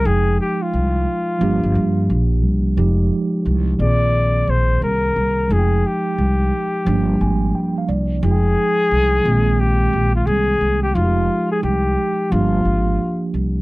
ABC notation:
X:1
M:4/4
L:1/16
Q:"Swing 16ths" 1/4=88
K:Fdor
V:1 name="Flugelhorn"
A2 G F8- F3 z2 | z6 d4 c2 B4 | A2 G12 z2 | A8 G3 F A3 G |
F3 A G4 F6 z2 |]
V:2 name="Tine electric piano"
z16 | z16 | z8 z2 a2 g f d2 | z16 |
z16 |]
V:3 name="Tine electric piano"
[F,A,Eg]8 [F,B,DG]8 | [F,G,A,EG]6 [E,B,CA]8- [E,B,CA]2 | [F,A,EFg]8 [F,G,=A,B,D]8 | [F,A,EFg]6 [E,A,B,C]8- [E,A,B,C]2 |
[F,A,E_G=G]8 [F,B,DG]8 |]
V:4 name="Upright bass" clef=bass
F,,,2 z2 C,,2 z2 G,,, G,,, G,,2 B,,,2 C,,2 | F,,,2 z2 C,,2 B,,,4 B,,,2 C,,2 C,,2 | F,,,2 z2 C,,2 z2 G,,,2 A,,,2 z2 C,,2 | F,,,2 z2 C,,2 B,,,4 B,,,2 C,,2 C,,2 |
F,,,2 z2 C,,2 z2 G,,,2 A,,,2 z2 C,,2 |]